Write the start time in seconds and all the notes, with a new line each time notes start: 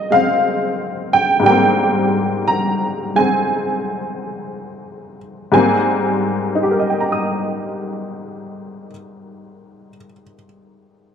Already playing: G#2 G3 A#3 C4 D#5 F5
0.11 G#3 C4 F5
1.13 G5
1.40 G#2 G3
1.46 A#3 G5
1.51 C4
2.48 A#5
3.15 G#3 C4 G#5
5.52 G#2 G3 A#3 C4 G#5
6.55 D#4
6.63 G4
6.71 A#4
6.80 D#5
6.90 G5
7.00 A#5
7.12 D#6